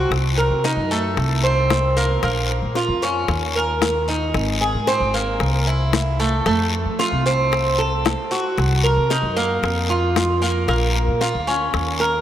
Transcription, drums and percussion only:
0.11 high bongo, long guiro
0.64 high bongo, short guiro
0.91 short guiro
1.17 high bongo, long guiro
1.70 high bongo, low bongo, short guiro
1.97 short guiro
2.23 high bongo, long guiro
2.49 high bongo
2.75 high bongo, short guiro
3.02 high bongo, short guiro
3.28 high bongo, long guiro
3.55 high bongo
3.82 high bongo, low bongo, short guiro
4.08 short guiro
4.34 high bongo, long guiro
4.87 high bongo, short guiro
5.15 short guiro
5.40 high bongo, long guiro
5.93 high bongo, low bongo, short guiro
6.20 short guiro
6.46 high bongo, long guiro
6.72 high bongo
7.00 high bongo, short guiro
7.26 high bongo, short guiro
7.52 high bongo, long guiro
7.79 high bongo
8.05 high bongo, low bongo, short guiro
8.31 short guiro
8.58 high bongo, long guiro
9.10 high bongo, short guiro
9.37 short guiro
9.63 high bongo, long guiro
10.16 high bongo, low bongo, short guiro
10.43 short guiro
10.69 high bongo, long guiro
10.95 high bongo
11.21 high bongo, short guiro
11.47 high bongo, short guiro
11.74 high bongo, long guiro
12.00 high bongo

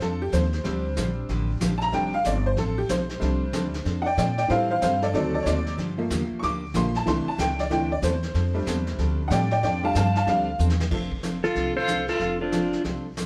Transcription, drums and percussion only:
0.00 brush sweep, snare
0.33 snare, hi-hat pedal
0.53 snare
0.64 brush sweep, snare
0.97 snare, hi-hat pedal
1.29 brush sweep, snare
1.61 snare, hi-hat pedal
1.81 snare
1.93 brush sweep, snare
2.24 snare, hi-hat pedal
2.57 brush sweep, snare
2.89 snare, hi-hat pedal
3.09 snare
3.21 brush sweep, snare
3.53 snare, hi-hat pedal
3.74 snare
3.86 brush sweep, snare
4.18 snare, hi-hat pedal
4.38 snare
4.49 brush sweep, snare
4.82 snare, hi-hat pedal
5.02 snare
5.14 brush sweep, snare
5.46 snare, hi-hat pedal
5.66 snare
5.78 brush sweep, snare
6.10 snare, hi-hat pedal
6.42 brush sweep, snare
6.74 snare, hi-hat pedal
6.95 snare
7.07 brush sweep, snare
7.39 snare, hi-hat pedal
7.59 snare
7.71 brush sweep, snare
8.03 snare, hi-hat pedal
8.23 snare
8.35 brush sweep, snare
8.67 snare, hi-hat pedal
8.87 snare
8.98 brush sweep, snare
9.31 snare, hi-hat pedal
9.51 snare
9.63 brush sweep, snare
9.95 snare, hi-hat pedal
10.15 snare
10.27 brush sweep, snare
10.59 hi-hat pedal
10.70 snare
10.80 snare
10.91 brush sweep, kick, snare, crash
11.12 kick
11.23 snare, hi-hat pedal
11.43 snare
11.55 brush sweep, snare
11.88 snare, hi-hat pedal
12.08 snare
12.20 brush sweep, snare
12.52 snare, hi-hat pedal
12.73 snare
12.84 brush sweep, snare
13.17 snare, hi-hat pedal

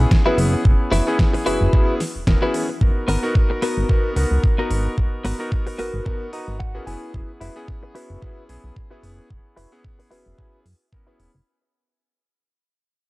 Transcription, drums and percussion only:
0.11 kick, snare
0.38 open hi-hat
0.65 kick
0.92 snare, open hi-hat
1.19 kick, snare
1.34 open hi-hat
1.46 open hi-hat
1.73 kick
2.00 snare, open hi-hat
2.27 kick, snare
2.54 open hi-hat
2.81 kick
3.08 open hi-hat
3.35 kick
3.62 open hi-hat
3.89 kick
4.16 open hi-hat
4.44 kick
4.71 open hi-hat
4.98 kick
5.25 open hi-hat
5.52 kick
5.67 open hi-hat
5.79 open hi-hat
6.06 kick
6.33 open hi-hat
6.60 kick
6.87 open hi-hat
7.14 kick
7.41 open hi-hat
7.68 kick
7.95 open hi-hat
8.22 kick
8.49 open hi-hat
8.76 kick
9.03 open hi-hat
9.30 kick
9.57 open hi-hat
9.84 kick
10.00 open hi-hat
10.11 open hi-hat
10.39 kick
10.66 open hi-hat
10.93 kick
11.20 open hi-hat

